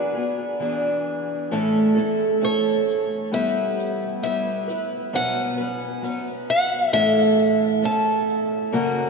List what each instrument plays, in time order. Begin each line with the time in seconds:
Already playing: twelve-string acoustic guitar E3 B3 D4 G#4, steel-string acoustic guitar B4
0.15 twelve-string acoustic guitar B3 D4 G#4
0.60 twelve-string acoustic guitar E3 B3 D4 G#4
1.51 twelve-string acoustic guitar A2 E3 A3 C#4 E4 A4, shaker
1.95 twelve-string acoustic guitar A3 C#4 E4 A4, shaker
2.41 twelve-string acoustic guitar A3 C#4 E4 A4, steel-string acoustic guitar C#5, shaker
2.89 shaker
3.32 twelve-string acoustic guitar G3 B3 E4 B4, steel-string acoustic guitar E5, shaker
3.80 shaker
4.22 twelve-string acoustic guitar G3 B3 E4 B4, steel-string acoustic guitar E5, shaker
4.68 twelve-string acoustic guitar B3 E4 B4, shaker
5.13 twelve-string acoustic guitar B2 F#3 B3 C#4 B4, steel-string acoustic guitar F#5, shaker
5.58 twelve-string acoustic guitar B3 C#4 B4, shaker
6.02 twelve-string acoustic guitar F#3 B3 C#4 B4, shaker
6.50 steel-string acoustic guitar F#5
6.93 twelve-string acoustic guitar A2 E3 A3 C#4 E4 A4, steel-string acoustic guitar E5, shaker
7.39 shaker
7.82 twelve-string acoustic guitar A3 C#4 E4 A4, steel-string acoustic guitar A5, shaker
8.29 shaker
8.72 twelve-string acoustic guitar F#2 C#3 F#3 A#3 C#4 F#4, shaker